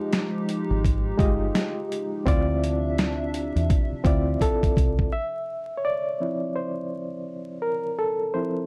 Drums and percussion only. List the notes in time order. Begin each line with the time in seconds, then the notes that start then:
0.13 snare, closed hi-hat
0.49 closed hi-hat
0.85 kick, closed hi-hat
1.19 kick, closed hi-hat
1.55 snare, closed hi-hat
1.92 closed hi-hat
2.27 kick, closed hi-hat
2.64 closed hi-hat
2.98 snare, closed hi-hat
3.34 closed hi-hat
3.57 closed hi-hat
3.70 kick, closed hi-hat
4.05 kick, closed hi-hat
4.41 kick, closed hi-hat
4.63 kick, closed hi-hat
4.77 kick, closed hi-hat
4.99 kick